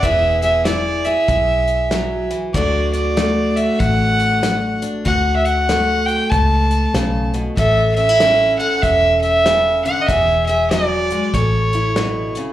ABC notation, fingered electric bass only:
X:1
M:4/4
L:1/8
Q:"Swing" 1/4=96
K:D
V:1 name="Fingered electric bass" clef=bass
E,,,4 B,,,4 | D,,4 A,,,4 | D,,4 C,,2 B,,,2 | A,,,4 E,,,4 |
E,,,4 A,,,4 |]